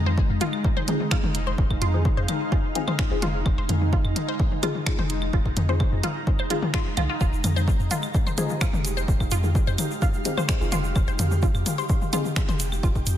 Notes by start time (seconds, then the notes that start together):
Already playing: F2 G#3 D#4 A#5
0.06 C5, high tom
0.18 F1, kick
0.28 F2 F5
0.41 F4, closed hi-hat, high tom
0.53 claves
0.64 kick
0.77 C5, high tom
0.88 C4 D#4 F4 G#4, closed hi-hat, mid tom
1.00 high tom
1.11 F4, finger snap, kick, claves
1.23 F1, mid tom
1.35 closed hi-hat
1.47 C5
1.58 F1, kick
1.70 F1, kick, claves
1.81 F2 F4, closed hi-hat
1.94 C4 D#4 F4 G#4, high tom
2.05 F1, kick
2.17 F2 C5
2.28 closed hi-hat, high tom, claves
2.52 F4, kick
2.75 C4 D#4 F4 G#4, closed hi-hat, high tom
2.88 C5, mid tom, claves
2.99 finger snap, kick
3.11 F1 C4 D#4 F4 G#4
3.22 F4, closed hi-hat, mid tom
3.46 F1, kick, claves
3.58 F1 C5
3.69 F2, closed hi-hat, mid tom
3.81 high tom
3.93 F1 F4, kick
4.03 F2 A#5, claves
4.16 closed hi-hat, high tom
4.28 C5
4.40 kick
4.52 high tom
4.63 C4 D#4 F4 G#4, closed hi-hat, mid tom, claves
4.75 high tom
4.86 finger snap, kick
4.98 F1 C5, mid tom
5.10 closed hi-hat
5.22 claves
5.33 F1 F4, kick
5.45 F1, kick
5.57 F2, closed hi-hat, mid tom
5.69 C4 D#4 F4 G#4 C5, high tom
5.80 F1, kick, claves
5.92 F2
6.03 F4, closed hi-hat, high tom
6.27 kick
6.39 C5, claves
6.50 C4 D#4 F4 G#4, closed hi-hat, high tom
6.62 mid tom
6.74 F4, finger snap, kick
6.97 C2 F4, closed hi-hat, mid tom, claves
7.09 F4
7.21 F1 F4 G4, kick, shaker
7.33 F1, shaker
7.44 F2, closed hi-hat, mid tom, claves, shaker
7.56 C5, high tom, shaker
7.68 F1, kick, shaker
7.79 F2 F5, shaker
7.91 F4, closed hi-hat, high tom, shaker
8.02 claves, shaker
8.14 kick, shaker
8.26 C5, high tom, shaker
8.38 C4 D#4 F4 G#4, closed hi-hat, mid tom, shaker
8.49 high tom, shaker
8.61 F4, finger snap, kick, claves, shaker
8.73 F1, mid tom, shaker
8.85 closed hi-hat, shaker
8.97 C5, shaker
9.08 F1, kick, shaker
9.20 F1, kick, claves, shaker
9.31 F2 F4, closed hi-hat, shaker
9.44 C4 D#4 F4 G#4, high tom, shaker
9.55 F1, kick, shaker
9.67 F2 C5, shaker
9.78 closed hi-hat, high tom, claves, shaker
9.91 shaker
10.02 F4, kick, shaker
10.14 shaker
10.25 C4 D#4 F4 G#4, closed hi-hat, high tom, shaker
10.37 C5, mid tom, claves, shaker
10.49 finger snap, kick, shaker
10.61 F1 C4 D#4 F4 G#4, shaker
10.72 F4, closed hi-hat, mid tom, shaker
10.84 shaker
10.96 F1, kick, claves, shaker
11.07 F1 C5, shaker
11.19 F2, closed hi-hat, mid tom, shaker
11.31 high tom, shaker
11.42 F1 F4, kick, shaker
11.53 F2 G5, claves, shaker
11.66 closed hi-hat, high tom, shaker
11.78 C5, shaker
11.89 kick, shaker
12.02 high tom, shaker
12.13 C4 D#4 F4 G#4, closed hi-hat, mid tom, claves, shaker
12.25 high tom, shaker
12.36 finger snap, kick, shaker
12.49 F1 C5, mid tom, shaker
12.60 closed hi-hat, shaker
12.72 claves, shaker
12.83 F1 F4, kick, shaker
12.95 F1, kick, shaker
13.06 F2, closed hi-hat, shaker